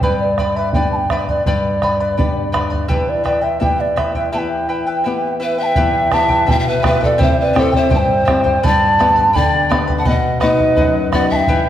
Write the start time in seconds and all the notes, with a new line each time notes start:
0.01 G2 G4 B4 D5 G5 B5, bombo low
0.20 D5
0.38 B4 D5 G5 B5, bombo rim, bombo low
0.56 B4 D5 E5 B5
0.73 B3 D4 G4 B4 D5 G5 B5, bombo low
0.92 A5
0.96 G5
1.10 B4 D5 E5 G5 B5, bombo rim, bombo low
1.28 B4 D5 B5, bombo low
1.46 G2 G4 B4 D5 G5 B5, bombo low
1.82 B4 D5 G5 B5, bombo rim, bombo low
2.00 B4 D5 B5
2.17 B3 D4 G4 B4 D5 G5 B5, bombo low
2.52 B4 D5 G5 B5, bombo rim, bombo low
2.70 B4 D5 B5, bombo low
2.88 E2 E4 G4 B4 E5 G5, bombo low
3.09 D5
3.24 E4 B4 D5 E5 G5, bombo rim, bombo low
3.41 E4 B4 E5 G5
3.60 B3 E4 G4 B4 E5 G5, bombo low
3.80 D5
3.96 E4 B4 E5 G5, bombo rim, bombo low
4.15 E4 B4 E5 G5, bombo low
4.32 E2 E4 G4 B4 E5 G5 A5
4.39 G5
4.69 E4 B4 E5 G5
4.87 E4 B4 G5
5.04 B3 E4 G4 B4 E5 G5
5.40 E4 B4 E5 G5
5.58 E4 B4 E5 G5
5.62 G5 A5
5.76 E2 E4 G4 B4 E5 G5, bombo low
6.11 B3 E4 G4 B4 E5 G5 A5, bombo rim, bombo low
6.29 E4 B4 G5, bombo low
6.46 B2 E4 B4 E5 G5, bombo low
6.51 E5
6.59 E5 G5
6.68 B4 E5
6.82 B3 E4 G4 B4 E5 G5, bombo rim, bombo low
6.86 B4 E5
7.01 E4 A4 B4 D5 G5, bombo low
7.18 C3 E4 G4 C5 E5 G5, bombo low
7.40 B4 D5
7.53 C4 E4 G4 C5 E5 G5, bombo rim, bombo low
7.58 A4 C5
7.72 E4 C5 G5, bombo low
7.77 E5
7.90 G2 E4 C5 E5 G5, bombo low
7.95 G5 A5
8.25 C4 E4 G4 C5 E5 G5, bombo rim, bombo low
8.44 E4 C5 G5, bombo low
8.63 G2 G4 B4 D5 G5 A5 B5, bombo low
8.99 B3 D4 G4 B4 D5 G5 B5, bombo rim, bombo low
9.16 B4 D5 B5, bombo low
9.33 D3 B4 D5 G5 B5, bombo low
9.69 B3 D4 G4 B4 D5 G5 B5, bombo rim, bombo low
9.88 B4 D5 B5, bombo low
9.98 F#5 A5
10.05 B2 B4 D#5 F#5 G5, bombo low
10.11 F#5
10.40 B3 D#4 F#4 B4 D#5 F#5, bombo rim, bombo low
10.57 D#5 F#5, bombo low
10.76 F#2 B4 D#5 F#5, bombo low
11.12 B3 D#4 F#4 B4 D5 D#5 F#5, bombo rim, bombo low
11.30 D#5 E5 F#5 A5, bombo low
11.36 G5
11.47 E3 E4 G4 B4 E5 G5, bombo low